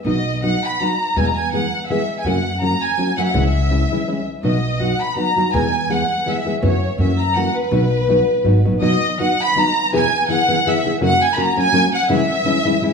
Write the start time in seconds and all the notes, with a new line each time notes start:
0.05 B1 B2 F#3 B3 D#4 F#4 D#5
0.43 F#3 B3 D#4 F#4 F#5
0.64 B5
0.80 F#3 B3 D#4 F#4 A#5
1.16 E2 B2 E3 G#3 B3 G#4 G#5
1.25 A#5
1.33 G#5
1.53 E3 G#3 B3 G#4 F#5
1.88 E3 G#3 B3 G#4 E5
2.19 G#5
2.24 F#2 C#3 F#3 A#3 C#4 F#4 F#5
2.61 F#3 A#3 C#4 F#4 A#5
2.81 G#5
2.98 F#3 A#3 C#4 F#4
3.17 F#3 A#3 C#4 F#4 E5 F#5
3.26 F#5
3.33 C#2 C#3 E3 G#3 C#4 E4 E5
3.69 E3 G#3 C#4 E4
3.91 E3 G#3 C#4 E4
4.07 E3 G#3 C#4 E4
4.43 B1 B2 F#3 B3 D#4 F#4 D#5
4.80 F#3 B3 D#4 F#4 F#5
5.00 B5
5.16 F#3 B3 D#4 F#4 A#5
5.36 F#3 B3 D#4 F#4
5.53 E2 B2 E3 G#3 B3 G#4 G#5
5.89 E3 G#3 B3 G#4 F#5
6.26 E3 G#3 B3 G#4 E5
6.45 E3 G#3 B3 G#4
6.62 F#2 C#3 E3 B3 C#4 F#4 C#5
6.98 F#2 E3 A#3 C#4 F#4 E5
7.19 A#5
7.35 E3 A#3 C#4 F#4 F#5
7.55 B4
7.71 B1 B2 F#3 B3 D#4 F#4
8.08 F#3 B3 D#4 F#4
8.44 G#1 F#3 B3 D#4 F#4
8.65 A#1 F#3 B3 D#4 F#4
8.81 B2 F#3 B3 D#4 F#4 D#5
9.19 F#3 B3 D#4 F#4 F#5
9.41 B5
9.55 F#3 B3 D#4 F#4 A#5
9.92 E2 B2 E3 B3 E4 G#4 G#5
10.28 E3 B3 E4 G#4 F#5
10.48 E3 B3 E4 G#4
10.66 E3 B3 E4 G#4 E5
10.85 E3 B3 E4 G#4
11.01 F#2 C#3 F#3 A#3 C#4 F#4 F#5
11.22 G#5
11.34 F#3 A#3 C#4 B5
11.38 F#4 A#5
11.56 F#3 A#3 C#4 F#4 G#5
11.72 F#3 A#3 C#4 F#4
11.94 F#5
12.09 C#3 E3 G#3 C#4 E4 E5
12.44 E3 G#3 C#4 E4
12.65 E3 G#3 C#4 E4
12.82 E3 G#3 C#4 E4